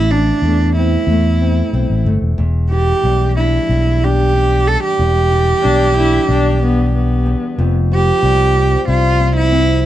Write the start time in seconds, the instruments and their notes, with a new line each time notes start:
Already playing: fingered electric bass A1, nylon-string guitar A2 E3 E4, cello E4
0.11 nylon-string guitar E3, cello D4
0.42 fingered electric bass E2, nylon-string guitar A3
0.77 nylon-string guitar C4, cello E4
1.07 fingered electric bass E2, nylon-string guitar A3
1.41 nylon-string guitar C4
1.73 fingered electric bass B1, nylon-string guitar C4
1.90 fingered electric bass A1
2.05 fingered electric bass G1, nylon-string guitar A3
2.22 fingered electric bass E1
2.38 fingered electric bass E1, nylon-string guitar E2
2.71 nylon-string guitar E3, cello G4
3.04 fingered electric bass B1, nylon-string guitar G3
3.36 nylon-string guitar D4, cello E4
3.69 fingered electric bass B1, nylon-string guitar G3
4.03 nylon-string guitar D4, cello G4
4.36 nylon-string guitar D4
4.68 nylon-string guitar G3, cello A4
4.84 cello G4
4.99 fingered electric bass E1, nylon-string guitar E2
5.32 nylon-string guitar E3
5.63 fingered electric bass B1, nylon-string guitar G3, viola D4
5.97 nylon-string guitar D4, viola E4
6.29 fingered electric bass B1, nylon-string guitar G3, viola D4
6.63 viola B3, nylon-string guitar D4
6.95 viola B3
7.26 nylon-string guitar E2
7.58 fingered electric bass F1, nylon-string guitar F2
7.92 nylon-string guitar F3, cello G4
8.23 fingered electric bass C2, nylon-string guitar G3
8.57 nylon-string guitar C4
8.88 fingered electric bass C2, nylon-string guitar G3, cello F4
9.20 nylon-string guitar C4
9.37 cello E4
9.52 nylon-string guitar C4